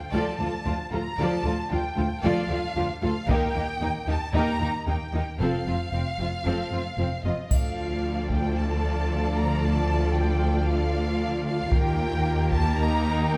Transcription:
Already playing: G5
0.13 D2 F3 F4 A4 D5 A5
0.40 D2 F3 F4 A4
0.65 D2 F3 D4 F4
0.91 D2 F3 F4 A4 A#5
1.18 D2 F3 F4 A4 D5 A5
1.44 D2 F3 F4 A4
1.71 D2 F3 D4 F4 G5
1.96 D2 F3 F4 A4
2.23 D2 F3 F4 A4 D5 F5
2.50 D2 F3 F4 A4
2.76 D2 F3 D4 F4
3.02 D2 F3 F4 A4 F5
3.28 D#2 A#3 D#4 G4 A#4 G5, taiko
3.54 D#2 A#3 D#4 G4
3.81 D#2 A#3 D#4
4.07 D#2 A#3 D#4 G4 A5
4.34 D#2 A#3 D#4 G4 A#4 A#5
4.60 D#2 A#3 D#4 G4
4.87 D#2 A#3 D#4 G5
5.13 D#2 A#3 D#4 G4
5.40 F1 F2 F3 C4 A4 F5
5.67 F1 F2 F3 C4 F4
5.92 F1 F2 F3 C4
6.19 F1 F2 F3 C4 F4
6.45 F1 F2 F3 C4 A4
6.72 F1 F2 F3 C4 F4
6.98 F1 F2 F3 C4
7.23 F1 F2 F3 C4 F4 D#5
7.50 D2 F3 F4 A4 D5 F5, taiko, triangle
8.29 G5, taiko
8.57 A5
9.36 A#5
9.62 A5
10.14 G5
10.66 F5
11.46 F5
11.71 D#2 A#3 G4 A#4 G5, taiko
12.51 A5, taiko
12.78 D#4 A#5
13.31 G5

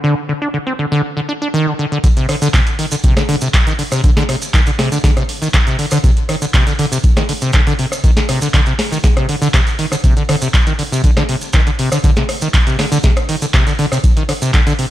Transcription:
0.04 D3
0.29 D3
0.42 D4
0.54 D3
0.67 C4
0.79 D3
0.92 D3
1.17 D3
1.29 D4
1.42 D4
1.54 D#3
1.67 D3
1.79 D3
1.92 D3
2.04 D3, kick, closed hi-hat, maracas
2.17 C3, closed hi-hat, maracas
2.29 D3, cross-stick, open hi-hat
2.42 D3, closed hi-hat, maracas
2.54 C3, kick, clap, closed hi-hat, maracas
2.67 closed hi-hat, maracas
2.79 D#3, open hi-hat
2.91 D3, maracas
3.04 C3, kick, closed hi-hat, maracas
3.17 D3, cross-stick, snare, closed hi-hat, maracas
3.29 D3, open hi-hat
3.41 C3, closed hi-hat, maracas
3.54 kick, cross-stick, clap, closed hi-hat, maracas
3.67 D#3, closed hi-hat, maracas
3.79 D3, open hi-hat
3.92 C3, cross-stick, maracas
4.04 D3, kick, closed hi-hat, maracas
4.17 D3, snare, closed hi-hat, maracas
4.29 C3, cross-stick, open hi-hat
4.42 closed hi-hat, maracas
4.54 D#3, kick, clap, closed hi-hat, maracas
4.66 D3, closed hi-hat, maracas
4.79 C3, cross-stick, snare, open hi-hat
4.92 D3, maracas
5.04 D3, kick, snare, closed hi-hat, maracas
5.17 C3, cross-stick, closed hi-hat, maracas
5.29 open hi-hat
5.42 D#3, closed hi-hat, maracas
5.54 D3, kick, cross-stick, clap, closed hi-hat, maracas
5.67 C3, closed hi-hat, maracas
5.79 D3, open hi-hat
5.91 D3, cross-stick, maracas
6.04 C3, kick, closed hi-hat, maracas
6.17 closed hi-hat, maracas
6.29 D#3, cross-stick, open hi-hat
6.42 D3, closed hi-hat, maracas
6.54 C3, kick, clap, closed hi-hat, maracas
6.67 D3, closed hi-hat, maracas
6.79 D3, open hi-hat
6.92 C3, maracas
7.03 kick, closed hi-hat, maracas
7.17 D#3, cross-stick, snare, closed hi-hat, maracas
7.29 D3, open hi-hat
7.42 C3, closed hi-hat, maracas
7.53 D3, kick, cross-stick, clap, closed hi-hat, maracas
7.67 D3, closed hi-hat, maracas
7.79 C3, open hi-hat
7.92 cross-stick, maracas
8.04 D#3, kick, closed hi-hat, maracas
8.17 D3, snare, closed hi-hat, maracas
8.29 C3, cross-stick, open hi-hat
8.42 D3, closed hi-hat, maracas
8.54 D3, kick, clap, closed hi-hat, maracas
8.66 C3, closed hi-hat, maracas
8.79 cross-stick, snare, open hi-hat
8.92 D#3, maracas
9.04 D3, kick, snare, closed hi-hat, maracas
9.17 C3, cross-stick, closed hi-hat, maracas
9.29 D3, open hi-hat
9.42 D3, closed hi-hat, maracas
9.54 C3, kick, cross-stick, clap, closed hi-hat, maracas
9.67 closed hi-hat, maracas
9.79 D#3, open hi-hat
9.92 D3, cross-stick, maracas
10.04 C3, kick, closed hi-hat, maracas
10.17 D3, closed hi-hat, maracas
10.29 D3, cross-stick, open hi-hat
10.42 C3, closed hi-hat, maracas
10.54 kick, clap, closed hi-hat, maracas
10.67 D#3, closed hi-hat, maracas
10.79 D3, open hi-hat
10.92 C3, maracas
11.04 D3, kick, closed hi-hat, maracas
11.17 D3, cross-stick, snare, closed hi-hat, maracas
11.29 C3, open hi-hat
11.41 closed hi-hat, maracas
11.53 D#3, kick, cross-stick, clap, closed hi-hat, maracas
11.67 D3, closed hi-hat, maracas
11.79 C3, open hi-hat
11.92 D3, cross-stick, maracas
12.04 D3, kick, closed hi-hat, maracas
12.16 C3, snare, closed hi-hat, maracas
12.29 cross-stick, open hi-hat
12.42 D#3, closed hi-hat, maracas
12.54 D3, kick, clap, closed hi-hat, maracas
12.67 C3, closed hi-hat, maracas
12.79 D3, cross-stick, snare, open hi-hat
12.92 D3, maracas
13.03 C3, kick, snare, closed hi-hat, maracas
13.17 cross-stick, closed hi-hat, maracas
13.29 D#3, open hi-hat
13.42 D3, closed hi-hat, maracas
13.54 C3, kick, cross-stick, clap, closed hi-hat, maracas
13.67 D3, closed hi-hat, maracas
13.79 D3, open hi-hat
13.92 C3, cross-stick, maracas
14.04 kick, closed hi-hat, maracas
14.17 D#3, closed hi-hat, maracas
14.29 D3, cross-stick, open hi-hat
14.42 C3, closed hi-hat, maracas
14.54 D3, kick, clap, closed hi-hat, maracas
14.67 D3, closed hi-hat, maracas
14.79 C3, open hi-hat

